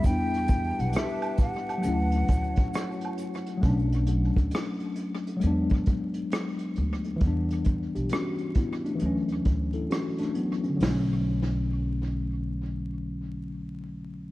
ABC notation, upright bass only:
X:1
M:4/4
L:1/16
Q:"Swing 16ths" 1/4=67
K:Bm
V:1 name="Upright bass" clef=bass
E,,3 B,,, z4 D,,2 D,,2 z4 | B,,,3 D,, z4 E,,2 z4 D,,2 | E,,3 B,,, z4 D,,2 D,,2 z4 | B,,,16 |]